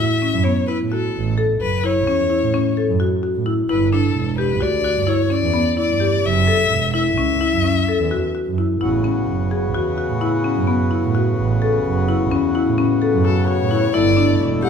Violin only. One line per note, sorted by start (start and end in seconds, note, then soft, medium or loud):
0.00 0.45 E5 medium
0.44 0.67 C#5 medium
0.67 0.78 B4 medium
0.91 1.34 A4 medium
1.61 1.86 B4 medium
1.85 2.77 C#5 medium
3.70 3.91 B4 medium
3.92 4.35 A4 medium
4.39 4.63 B4 medium
4.62 5.10 D5 medium
5.08 5.33 C#5 medium
5.32 5.78 D5 medium
5.79 6.27 D5 medium
6.25 6.94 E5 medium
6.95 8.31 E5 medium
13.25 13.46 A4 medium
13.47 13.94 C#5 medium
13.93 14.39 D5 medium
14.63 14.70 F#5 medium